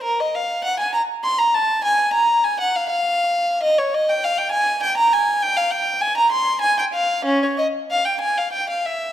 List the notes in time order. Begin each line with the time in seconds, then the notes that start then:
0.04 A#4
0.20 D#5
0.35 F5
0.64 F#5
0.80 G#5
0.93 A#5
1.24 C6
1.39 A#5
1.54 A5
1.84 G#5
2.13 A#5
2.44 G#5
2.60 F#5
2.76 F5
2.90 F5
3.63 D#5
3.78 C#5
3.94 D#5
4.09 G5
4.24 F5
4.38 G5
4.52 G#5
4.83 G5
4.97 A#5
5.13 G#5
5.42 G5
5.57 F5
5.71 G5
6.01 G#5
6.17 A#5
6.32 C6
6.61 G#5
6.78 G5
6.94 F5
7.25 C#4
7.43 C#5
7.58 D#5
7.91 F5
8.05 G5
8.21 G#5
8.38 F5
8.53 G5
8.70 F5
8.86 E5